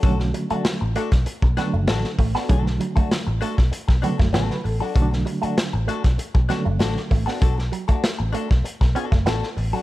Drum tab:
HH |x-xxx-xxx-x-x-o-|x-xxx-x-x-x-x-o-|x-xxx-xxx-x-x-o-|x-xxx-x-x-x-x-o-|
SD |-o--o--o--o-oo-o|-o--o--o-o-ooo--|-o--o--o--o-oo-o|-o--o--o-o-ooo--|
BD |o------o-o----o-|o--o---o-o-o----|o------o-o----o-|o--o---o-o-o----|